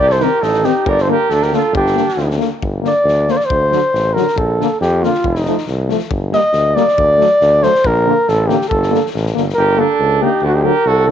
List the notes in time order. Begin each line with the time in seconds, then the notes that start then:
0.00 C2 G4 D5
0.08 A4 C5, snare
0.19 D#3 C4 G4 A#4, snare
0.41 A1 D#4 A4, snare
0.53 snare
0.61 D#3 C4 D#4 G4, snare
0.85 G1 A#4 D5, kick
0.98 A4 C5, snare
1.07 D3 A#3 A#4
1.12 G4
1.29 D2 A4, snare
1.35 D4
1.42 G4 A#4, snare
1.52 D3 A#3 F4 A4, snare
1.73 G1 G4, kick
1.77 D4
1.87 snare
1.96 D3 A#3, snare
2.08 snare
2.17 D2, snare
2.31 snare
2.39 D3 A#3, snare
2.62 G1, kick
2.82 D3 A#3, snare
2.87 D5
3.04 D2, snare
3.28 D3 A#3 C5, snare
3.37 D5, snare
3.45 C5
3.50 D2, kick
3.72 D3 F#3, snare
3.93 A1, snare
4.14 F#3 A#4, snare
4.18 D3
4.27 snare
4.36 A#1 A4, kick
4.59 D3 A#3, snare
4.81 F2 G4, snare
5.03 D3 A#3 F4, snare
5.14 snare
5.24 F1 D#4, kick
5.35 snare
5.45 F3 A3, snare
5.58 snare
5.67 C2, snare
5.89 F3 A3, snare
5.99 snare
6.10 G1, kick
6.32 G3 A#3 D#5, snare
6.53 D2, snare
6.75 G3 A#3 D5, snare
6.88 snare
6.98 D2, kick
7.18 F#3 A3, snare
7.41 D2, snare
7.63 F#3 A3 C5, snare
7.75 snare
7.84 A#1 A#4, kick
8.06 D3 A#3
8.28 A1 A4, snare
8.47 D3 A#3 G4, snare
8.61 snare
8.68 G1 A4, kick
8.83 snare
8.91 D3 A#3, snare
9.06 snare
9.15 A1, snare
9.26 snare
9.35 G1 D3 A#3, snare
9.49 snare
9.54 G1 A#4
9.58 G4
9.76 D3 A#3 D4 A4
9.99 C#2
10.22 D3 A#3 D#4 G4
10.42 D2 D4
10.46 F#4
10.54 D#4 G4
10.63 D3 F#3 G4 A#4
10.86 C2 F#4 A4
11.08 D3 F#3